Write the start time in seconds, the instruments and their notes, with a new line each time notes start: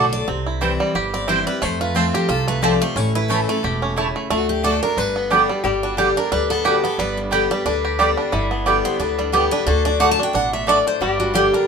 Already playing: upright bass B1, steel-string acoustic guitar A2 D3 A3 D4 F#4 A4
0.13 steel-string acoustic guitar D5
0.28 upright bass C2, steel-string acoustic guitar C3, five-string banjo C4
0.46 five-string banjo E4
0.61 steel-string acoustic guitar E3 G3 C4 E4, five-string banjo E3, mandolin C4 E4 C5 G5
0.80 five-string banjo G3
0.95 upright bass G1, steel-string acoustic guitar G2, five-string banjo G4
1.14 five-string banjo C4, steel-string acoustic guitar D5
1.28 steel-string acoustic guitar E3 G3 C4 E4 C5, mandolin C4 E4 C5 G5, five-string banjo E4
1.47 five-string banjo G3, steel-string acoustic guitar C4 E4 B4
1.62 steel-string acoustic guitar F2 C5, upright bass F2, five-string banjo A3
1.81 five-string banjo F4, steel-string acoustic guitar B4
1.95 steel-string acoustic guitar F3 A3 C4 F4 A4, mandolin C4 F4 C5 A5, five-string banjo C4
2.14 five-string banjo G4, steel-string acoustic guitar G4
2.29 upright bass C2, steel-string acoustic guitar C3 A4, five-string banjo F4
2.47 five-string banjo A3, steel-string acoustic guitar B4
2.62 steel-string acoustic guitar F3 A3 C4 F4 D5, mandolin C4 F4 C5 A5, five-string banjo G4
2.80 five-string banjo A3, steel-string acoustic guitar C4 F4 C5
2.96 upright bass A1, steel-string acoustic guitar A2 C#5, five-string banjo C#4
3.15 five-string banjo E4, steel-string acoustic guitar B4
3.28 steel-string acoustic guitar E3 A3 C#4 E4 A4, five-string banjo E3, mandolin A3 E4 C#5 A5
3.48 five-string banjo A3, steel-string acoustic guitar C#4 E4 A4
3.63 upright bass E1, steel-string acoustic guitar B2, five-string banjo G4
3.82 five-string banjo C#4
3.96 steel-string acoustic guitar C#3, mandolin A3 E4 C#5 A5, five-string banjo E4
4.16 five-string banjo A3
4.30 upright bass D2, steel-string acoustic guitar D3 F#4, five-string banjo A3
4.49 steel-string acoustic guitar G4
4.63 steel-string acoustic guitar D3 A3 D4 F#4 A4, mandolin A3 F#4 D5 A5, five-string banjo D4
4.83 five-string banjo D4, steel-string acoustic guitar D4 F#4 A#4
4.97 upright bass G1, steel-string acoustic guitar G2 B4, five-string banjo D3
5.16 five-string banjo B3
5.30 steel-string acoustic guitar D3 G3 B3 G4, mandolin B3 G4 D5 G5, five-string banjo D4
5.49 five-string banjo G3, steel-string acoustic guitar B3 G4
5.64 upright bass G1, steel-string acoustic guitar G2, five-string banjo G3, resonator guitar played with a steel bar G4
5.83 five-string banjo D4, steel-string acoustic guitar F#4
5.97 steel-string acoustic guitar D3 G3 B3 G4, five-string banjo G3, mandolin B3 G4 D5 G5
6.16 steel-string acoustic guitar B3 G4 A#4, five-string banjo D4
6.32 upright bass D2, steel-string acoustic guitar D3 B4, five-string banjo G3
6.50 five-string banjo B3, steel-string acoustic guitar A4
6.64 steel-string acoustic guitar D3 G3 B3 F#4 G4, mandolin B3 G4 D5 G5, five-string banjo G4
6.83 five-string banjo B3, steel-string acoustic guitar B3 G4 A4
6.98 upright bass G1, steel-string acoustic guitar G2 B4, five-string banjo G3
7.17 steel-string acoustic guitar D4
7.31 steel-string acoustic guitar D3 G3 B3 G4, mandolin B3 G4 D5 G5, five-string banjo G4
7.51 five-string banjo G3, steel-string acoustic guitar B3 G4 B4
7.65 upright bass D2, steel-string acoustic guitar D3 B4, five-string banjo D4
7.85 five-string banjo G4
7.99 steel-string acoustic guitar D3 G3 B3 G4, five-string banjo G3, mandolin B3 G4 D5 G5
8.17 five-string banjo D4
8.32 upright bass G1, steel-string acoustic guitar G2, five-string banjo D3, resonator guitar played with a steel bar E4
8.51 five-string banjo B3
8.66 steel-string acoustic guitar D3 G3 B3 G4, five-string banjo G3, mandolin B3 G4 D5 G5
8.85 five-string banjo B3, steel-string acoustic guitar C5
8.99 upright bass D2, steel-string acoustic guitar D3 B4, five-string banjo D4
9.19 five-string banjo G3, steel-string acoustic guitar D4
9.32 steel-string acoustic guitar D3 G3 B3 G4, mandolin B3 G4 D5 G5, five-string banjo B3
9.51 five-string banjo D4, steel-string acoustic guitar B4
9.66 upright bass D2, steel-string acoustic guitar D3 A4, five-string banjo D3, resonator guitar played with a steel bar F#4
9.85 five-string banjo D4, steel-string acoustic guitar D5
10.00 steel-string acoustic guitar D3 A3 D4 F#4 F#5, mandolin A3 F#4 D5 A5, five-string banjo A3
10.11 steel-string acoustic guitar A5
10.18 five-string banjo D4, steel-string acoustic guitar D4 F#4
10.23 steel-string acoustic guitar G5
10.33 upright bass A1, steel-string acoustic guitar B2 F#5, five-string banjo D4
10.53 five-string banjo A3, steel-string acoustic guitar E5
10.67 steel-string acoustic guitar A2 D5, mandolin A3 F#4 D5 A5, five-string banjo D4
10.87 five-string banjo D4, steel-string acoustic guitar C5
11.01 upright bass G1, steel-string acoustic guitar G2, five-string banjo G3, resonator guitar played with a steel bar G4
11.20 five-string banjo D4, steel-string acoustic guitar F#4
11.34 steel-string acoustic guitar D3 G3 B3 G4, five-string banjo G3, mandolin B3 G4 D5 G5
11.54 five-string banjo D4, steel-string acoustic guitar A#4